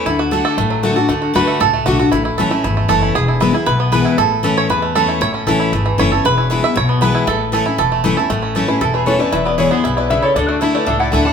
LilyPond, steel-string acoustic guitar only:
\new Staff \with { instrumentName = "Steel-string acoustic guitar" } { \time 4/4 \key a \major \tempo 4 = 233 << { r4 <d a d' fis'>4 r4 <d a d' fis'>8 <d' fis'>8 | r4 <d a d' fis'>4 r4 <d a d' fis'>8 <d' fis'>8 | r4 <e a cis' e'>8 <cis' e'>8 r4 <e a cis' e'>4 | r4 <e gis b e'>8 <b e'>8 r4 <e gis b e'>4 |
r4 <e a cis' e'>4 r4 <e a cis' e'>4 | r4 <e a cis' e'>4 r4 <e a cis' e'>8 <cis' e'>8 | r4 <e gis b e'>8 <b e'>8 r4 <e gis b e'>4 | r4 <e a cis' e'>8 <cis' e'>8 r4 <e a cis' e'>8 <cis' e'>8 |
r4 <e a cis' e'>8 <cis' e'>8 r4 <e a cis' e'>8 <cis' e'>8 | r4 <e gis b e'>8 <b e'>8 r2 | r4 <d a d' e'>4 r4 <d a d' e'>8 <d' e'>8 | } \\ { d2 a,2 | d2 a,2 | a,2 e,2 | e,2 b,2 |
a,2 e,2 | a,2 e,2 | e,2 b,2 | a,2 e,2 |
a,2 e,2 | e,2 b,4 cis4 | d2 a,2 | } >> }